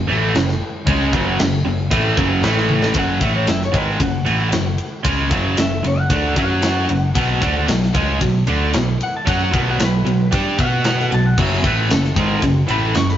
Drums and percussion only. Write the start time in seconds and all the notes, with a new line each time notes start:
0.35 snare, crash
0.49 snare
0.87 kick, crash
1.13 kick
1.39 snare, crash
1.91 kick, crash
2.17 kick
2.43 snare, crash
2.57 snare
2.69 high tom
2.82 snare
2.94 kick, ride
3.21 kick, ride
3.47 snare, ride
3.61 snare
3.74 kick, ride
4.00 kick, ride
4.26 ride
4.52 snare, ride
4.78 ride
5.05 kick, ride
5.31 kick, ride
5.57 snare, ride
5.84 ride
6.10 kick, ride
6.36 kick, ride
6.62 snare, ride
6.89 ride
7.15 kick, ride
7.42 kick, ride
7.68 snare, ride
7.83 snare
7.95 kick, ride
8.21 kick, ride
8.47 ride
8.73 snare, ride
9.01 ride
9.27 kick, ride
9.54 kick, ride
9.80 snare, ride
10.06 ride
10.32 kick, ride
10.58 kick, ride
10.84 snare, ride
10.99 snare
11.12 ride
11.38 kick, crash
11.64 kick, ride
11.90 snare, ride
12.05 snare
12.16 kick, ride
12.42 kick, ride
12.68 ride
12.95 snare, ride
13.09 snare